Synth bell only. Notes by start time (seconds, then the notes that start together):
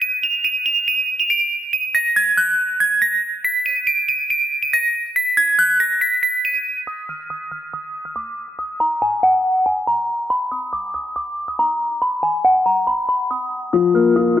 0.02 D#7
0.23 F7
0.44 D#7
0.66 F7
0.88 D#7
1.20 F7
1.30 D7
1.73 D#7
1.95 A#6
2.16 G#6
2.37 F#6
2.80 G#6
3.02 A#6
3.45 B6
3.66 D#7
3.87 D7
4.09 D#7
4.30 D7
4.63 D#7
4.73 A#6
5.16 B6
5.37 G#6
5.59 F#6
5.80 A#6
6.01 B6
6.23 B6
6.45 D#7
6.87 D#6
7.09 F6
7.30 D#6
7.51 F6
7.73 D#6
8.05 F6
8.16 D6
8.59 D#6
8.80 A#5
9.02 G#5
9.23 F#5
9.66 G#5
9.87 A#5
10.30 B5
10.52 D#6
10.73 D6
10.94 D#6
11.16 D6
11.48 D#6
11.59 A#5
12.02 B5
12.23 G#5
12.45 F#5
12.66 A#5
12.87 B5
13.09 B5
13.31 D#6
13.73 D#6
13.95 F6
14.16 D#6